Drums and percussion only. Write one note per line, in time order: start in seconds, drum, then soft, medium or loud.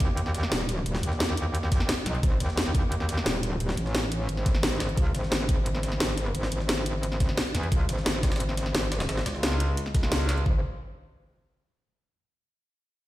0.00 kick loud
0.00 closed hi-hat medium
0.00 closed hi-hat loud
0.17 closed hi-hat medium
0.26 snare soft
0.35 snare medium
0.35 closed hi-hat loud
0.35 closed hi-hat medium
0.43 snare medium
0.52 snare loud
0.52 closed hi-hat medium
0.69 snare soft
0.69 closed hi-hat loud
0.69 closed hi-hat medium
0.86 closed hi-hat medium
0.95 snare medium
0.95 snare soft
1.03 closed hi-hat medium
1.03 closed hi-hat loud
1.12 snare soft
1.20 snare loud
1.20 closed hi-hat medium
1.20 open hi-hat medium
1.29 snare soft
1.37 closed hi-hat medium
1.37 closed hi-hat loud
1.55 closed hi-hat medium
1.63 snare soft
1.72 kick loud
1.72 snare soft
1.72 closed hi-hat medium
1.72 closed hi-hat loud
1.80 snare soft
1.89 snare loud
1.89 closed hi-hat medium
1.97 snare soft
2.06 snare medium
2.06 closed hi-hat medium
2.06 closed hi-hat loud
2.15 closed hi-hat soft
2.23 kick loud
2.23 closed hi-hat medium
2.40 snare soft
2.40 closed hi-hat medium
2.49 snare soft
2.57 snare loud
2.57 closed hi-hat medium
2.66 snare soft
2.75 kick loud
2.75 closed hi-hat medium
2.92 closed hi-hat medium
3.00 snare soft
3.09 snare soft
3.09 closed hi-hat medium
3.17 snare medium
3.26 snare loud
3.26 closed hi-hat medium
3.43 snare soft
3.43 closed hi-hat medium
3.60 closed hi-hat medium
3.69 snare soft
3.69 snare medium
3.77 closed hi-hat medium
3.86 snare soft
3.95 snare loud
3.95 closed hi-hat medium
3.95 open hi-hat medium
4.03 snare soft
4.12 closed hi-hat medium
4.29 closed hi-hat medium
4.37 snare soft
4.46 kick loud
4.46 snare soft
4.46 closed hi-hat medium
4.55 snare soft
4.63 snare loud
4.63 closed hi-hat medium
4.80 snare loud
4.80 snare soft
4.80 closed hi-hat medium
4.89 closed hi-hat soft
4.97 kick loud
4.97 closed hi-hat medium
5.15 snare soft
5.15 closed hi-hat medium
5.23 snare soft
5.32 snare loud
5.32 closed hi-hat medium
5.40 snare soft
5.49 kick loud
5.49 closed hi-hat medium
5.66 closed hi-hat medium
5.75 snare soft
5.83 snare medium
5.83 closed hi-hat medium
5.92 snare soft
6.00 snare loud
6.00 closed hi-hat medium
6.17 snare soft
6.17 closed hi-hat medium
6.35 closed hi-hat medium
6.43 snare medium
6.43 snare soft
6.52 closed hi-hat medium
6.60 snare soft
6.69 snare loud
6.69 closed hi-hat medium
6.69 open hi-hat medium
6.78 snare soft
6.86 closed hi-hat medium
7.03 closed hi-hat medium
7.12 snare soft
7.20 kick loud
7.20 snare soft
7.20 closed hi-hat medium
7.29 snare soft
7.37 snare loud
7.37 closed hi-hat medium
7.46 snare soft
7.55 snare soft
7.55 closed hi-hat loud
7.55 closed hi-hat medium
7.63 closed hi-hat soft
7.72 kick loud
7.72 closed hi-hat medium
7.89 snare soft
7.89 closed hi-hat loud
7.89 closed hi-hat medium
7.97 snare soft
8.06 snare loud
8.06 closed hi-hat medium
8.15 snare soft
8.23 kick loud
8.23 snare loud
8.23 closed hi-hat medium
8.23 closed hi-hat loud
8.32 snare loud
8.32 closed hi-hat medium
8.36 snare medium
8.36 closed hi-hat medium
8.40 closed hi-hat medium
8.49 snare soft
8.57 snare medium
8.57 closed hi-hat medium
8.66 snare soft
8.75 snare loud
8.75 closed hi-hat medium
8.92 snare loud
8.92 closed hi-hat medium
9.00 snare loud
9.00 closed hi-hat medium
9.09 snare loud
9.09 closed hi-hat medium
9.17 snare soft
9.17 snare medium
9.26 snare loud
9.26 closed hi-hat medium
9.26 closed hi-hat loud
9.35 snare soft
9.43 snare loud
9.43 closed hi-hat medium
9.52 snare soft
9.60 closed hi-hat medium
9.60 closed hi-hat loud
9.77 closed hi-hat medium
9.86 snare soft
9.95 kick loud
9.95 snare soft
9.95 closed hi-hat loud
9.95 closed hi-hat medium
10.03 snare soft
10.12 snare loud
10.12 closed hi-hat medium
10.20 snare soft
10.29 snare loud
10.29 snare soft
10.29 closed hi-hat loud
10.29 closed hi-hat medium
10.37 closed hi-hat soft
10.46 kick loud